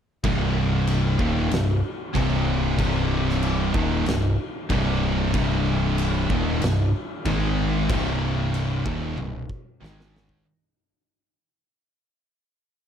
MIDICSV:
0, 0, Header, 1, 4, 480
1, 0, Start_track
1, 0, Key_signature, -3, "minor"
1, 0, Tempo, 637620
1, 182, Time_signature, 4, 2, 24, 8
1, 9693, End_track
2, 0, Start_track
2, 0, Title_t, "Distorted electric guitar"
2, 0, Program_c, 0, 30
2, 181, Note_on_c, 0, 36, 98
2, 184, Note_on_c, 0, 43, 100
2, 187, Note_on_c, 0, 48, 98
2, 893, Note_off_c, 0, 36, 0
2, 895, Note_off_c, 0, 43, 0
2, 896, Note_off_c, 0, 48, 0
2, 899, Note_on_c, 0, 39, 85
2, 902, Note_on_c, 0, 46, 103
2, 905, Note_on_c, 0, 51, 98
2, 1133, Note_off_c, 0, 39, 0
2, 1134, Note_off_c, 0, 46, 0
2, 1136, Note_off_c, 0, 51, 0
2, 1145, Note_on_c, 0, 36, 70
2, 1149, Note_on_c, 0, 43, 71
2, 1335, Note_off_c, 0, 36, 0
2, 1337, Note_off_c, 0, 43, 0
2, 1614, Note_on_c, 0, 36, 91
2, 1621, Note_on_c, 0, 43, 103
2, 1621, Note_on_c, 0, 48, 95
2, 2085, Note_off_c, 0, 36, 0
2, 2090, Note_off_c, 0, 43, 0
2, 2092, Note_off_c, 0, 48, 0
2, 2094, Note_on_c, 0, 36, 91
2, 2099, Note_on_c, 0, 43, 92
2, 2101, Note_on_c, 0, 48, 108
2, 2812, Note_off_c, 0, 36, 0
2, 2814, Note_off_c, 0, 43, 0
2, 2816, Note_off_c, 0, 48, 0
2, 2817, Note_on_c, 0, 39, 95
2, 2818, Note_on_c, 0, 46, 94
2, 2821, Note_on_c, 0, 51, 99
2, 3053, Note_off_c, 0, 39, 0
2, 3054, Note_off_c, 0, 46, 0
2, 3055, Note_off_c, 0, 51, 0
2, 3057, Note_on_c, 0, 36, 69
2, 3061, Note_on_c, 0, 43, 71
2, 3253, Note_off_c, 0, 36, 0
2, 3255, Note_off_c, 0, 43, 0
2, 3537, Note_on_c, 0, 36, 95
2, 3541, Note_on_c, 0, 43, 96
2, 3541, Note_on_c, 0, 48, 114
2, 4010, Note_off_c, 0, 36, 0
2, 4017, Note_off_c, 0, 43, 0
2, 4017, Note_off_c, 0, 48, 0
2, 4019, Note_on_c, 0, 36, 97
2, 4028, Note_on_c, 0, 43, 101
2, 4030, Note_on_c, 0, 48, 112
2, 4737, Note_off_c, 0, 36, 0
2, 4741, Note_off_c, 0, 43, 0
2, 4742, Note_off_c, 0, 48, 0
2, 4744, Note_on_c, 0, 39, 92
2, 4749, Note_on_c, 0, 46, 104
2, 4749, Note_on_c, 0, 51, 99
2, 4979, Note_off_c, 0, 39, 0
2, 4981, Note_off_c, 0, 46, 0
2, 4982, Note_off_c, 0, 51, 0
2, 4986, Note_on_c, 0, 36, 66
2, 4988, Note_on_c, 0, 43, 72
2, 5179, Note_off_c, 0, 36, 0
2, 5180, Note_off_c, 0, 43, 0
2, 5463, Note_on_c, 0, 44, 87
2, 5466, Note_on_c, 0, 51, 101
2, 5470, Note_on_c, 0, 56, 103
2, 5938, Note_off_c, 0, 44, 0
2, 5941, Note_off_c, 0, 51, 0
2, 5941, Note_on_c, 0, 36, 91
2, 5943, Note_off_c, 0, 56, 0
2, 5945, Note_on_c, 0, 43, 98
2, 5947, Note_on_c, 0, 48, 106
2, 6658, Note_off_c, 0, 36, 0
2, 6660, Note_off_c, 0, 43, 0
2, 6661, Note_off_c, 0, 48, 0
2, 6667, Note_on_c, 0, 39, 93
2, 6670, Note_on_c, 0, 46, 100
2, 6671, Note_on_c, 0, 51, 102
2, 6901, Note_off_c, 0, 39, 0
2, 6902, Note_off_c, 0, 46, 0
2, 6903, Note_off_c, 0, 51, 0
2, 6916, Note_on_c, 0, 36, 64
2, 6918, Note_on_c, 0, 43, 73
2, 7104, Note_off_c, 0, 36, 0
2, 7105, Note_off_c, 0, 43, 0
2, 7392, Note_on_c, 0, 44, 89
2, 7393, Note_on_c, 0, 51, 99
2, 7396, Note_on_c, 0, 56, 102
2, 7861, Note_off_c, 0, 44, 0
2, 7862, Note_off_c, 0, 51, 0
2, 7864, Note_off_c, 0, 56, 0
2, 9693, End_track
3, 0, Start_track
3, 0, Title_t, "Picked electric bass"
3, 0, Program_c, 1, 34
3, 179, Note_on_c, 1, 24, 98
3, 869, Note_off_c, 1, 24, 0
3, 899, Note_on_c, 1, 27, 96
3, 1123, Note_off_c, 1, 27, 0
3, 1138, Note_on_c, 1, 24, 80
3, 1362, Note_off_c, 1, 24, 0
3, 1620, Note_on_c, 1, 24, 98
3, 2071, Note_off_c, 1, 24, 0
3, 2099, Note_on_c, 1, 24, 95
3, 2791, Note_off_c, 1, 24, 0
3, 2816, Note_on_c, 1, 27, 95
3, 3043, Note_off_c, 1, 27, 0
3, 3060, Note_on_c, 1, 24, 81
3, 3285, Note_off_c, 1, 24, 0
3, 3540, Note_on_c, 1, 24, 99
3, 3993, Note_off_c, 1, 24, 0
3, 4019, Note_on_c, 1, 24, 95
3, 4714, Note_off_c, 1, 24, 0
3, 4745, Note_on_c, 1, 27, 97
3, 4970, Note_off_c, 1, 27, 0
3, 4984, Note_on_c, 1, 24, 84
3, 5209, Note_off_c, 1, 24, 0
3, 5460, Note_on_c, 1, 32, 97
3, 5915, Note_off_c, 1, 32, 0
3, 5945, Note_on_c, 1, 24, 101
3, 6637, Note_off_c, 1, 24, 0
3, 6667, Note_on_c, 1, 27, 95
3, 6891, Note_off_c, 1, 27, 0
3, 6913, Note_on_c, 1, 24, 80
3, 7134, Note_off_c, 1, 24, 0
3, 7388, Note_on_c, 1, 32, 96
3, 7837, Note_off_c, 1, 32, 0
3, 9693, End_track
4, 0, Start_track
4, 0, Title_t, "Drums"
4, 180, Note_on_c, 9, 36, 109
4, 181, Note_on_c, 9, 49, 67
4, 255, Note_off_c, 9, 36, 0
4, 257, Note_off_c, 9, 49, 0
4, 658, Note_on_c, 9, 49, 61
4, 733, Note_off_c, 9, 49, 0
4, 898, Note_on_c, 9, 36, 111
4, 973, Note_off_c, 9, 36, 0
4, 1140, Note_on_c, 9, 49, 66
4, 1159, Note_on_c, 9, 38, 118
4, 1215, Note_off_c, 9, 49, 0
4, 1234, Note_off_c, 9, 38, 0
4, 1619, Note_on_c, 9, 36, 115
4, 1626, Note_on_c, 9, 49, 67
4, 1695, Note_off_c, 9, 36, 0
4, 1701, Note_off_c, 9, 49, 0
4, 2098, Note_on_c, 9, 36, 107
4, 2102, Note_on_c, 9, 49, 67
4, 2173, Note_off_c, 9, 36, 0
4, 2177, Note_off_c, 9, 49, 0
4, 2481, Note_on_c, 9, 38, 32
4, 2556, Note_off_c, 9, 38, 0
4, 2579, Note_on_c, 9, 49, 60
4, 2654, Note_off_c, 9, 49, 0
4, 2818, Note_on_c, 9, 36, 110
4, 2893, Note_off_c, 9, 36, 0
4, 3058, Note_on_c, 9, 49, 57
4, 3077, Note_on_c, 9, 38, 114
4, 3133, Note_off_c, 9, 49, 0
4, 3152, Note_off_c, 9, 38, 0
4, 3537, Note_on_c, 9, 49, 59
4, 3538, Note_on_c, 9, 36, 110
4, 3612, Note_off_c, 9, 49, 0
4, 3613, Note_off_c, 9, 36, 0
4, 4018, Note_on_c, 9, 49, 62
4, 4020, Note_on_c, 9, 36, 109
4, 4093, Note_off_c, 9, 49, 0
4, 4095, Note_off_c, 9, 36, 0
4, 4502, Note_on_c, 9, 49, 63
4, 4578, Note_off_c, 9, 49, 0
4, 4743, Note_on_c, 9, 36, 104
4, 4818, Note_off_c, 9, 36, 0
4, 4981, Note_on_c, 9, 49, 63
4, 5000, Note_on_c, 9, 38, 114
4, 5056, Note_off_c, 9, 49, 0
4, 5075, Note_off_c, 9, 38, 0
4, 5461, Note_on_c, 9, 49, 64
4, 5463, Note_on_c, 9, 36, 113
4, 5536, Note_off_c, 9, 49, 0
4, 5538, Note_off_c, 9, 36, 0
4, 5943, Note_on_c, 9, 49, 69
4, 5944, Note_on_c, 9, 36, 114
4, 6018, Note_off_c, 9, 49, 0
4, 6019, Note_off_c, 9, 36, 0
4, 6429, Note_on_c, 9, 49, 62
4, 6504, Note_off_c, 9, 49, 0
4, 6668, Note_on_c, 9, 36, 108
4, 6743, Note_off_c, 9, 36, 0
4, 6909, Note_on_c, 9, 48, 67
4, 6984, Note_off_c, 9, 48, 0
4, 7148, Note_on_c, 9, 36, 72
4, 7223, Note_off_c, 9, 36, 0
4, 7410, Note_on_c, 9, 38, 89
4, 7486, Note_off_c, 9, 38, 0
4, 7531, Note_on_c, 9, 38, 81
4, 7606, Note_off_c, 9, 38, 0
4, 7652, Note_on_c, 9, 38, 102
4, 7727, Note_off_c, 9, 38, 0
4, 7747, Note_on_c, 9, 36, 94
4, 7822, Note_off_c, 9, 36, 0
4, 9693, End_track
0, 0, End_of_file